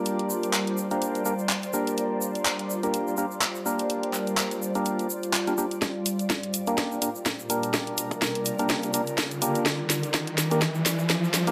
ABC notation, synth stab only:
X:1
M:4/4
L:1/16
Q:"Swing 16ths" 1/4=125
K:Gm
V:1 name="Synth stab"
[B,DGB]6- [B,DGB] [B,DGB]3 [B,DGB] z3 [B,DGB]2- | [B,DGB]6- [B,DGB] [B,DGB]3 [B,DGB] z3 [B,DGB]2- | [B,DGB]6- [B,DGB] [B,DGB]3 z3 [B,DGB] [B,DGB] z | z6 z [B,DGB]3 [B,DGB] z3 [B,DGB]2- |
[B,DGB]6- [B,DGB] [B,DGB]3 [B,DGB] z3 [B,DGB]2 | z6 z [B,DGB] z6 z [B,DGB] |]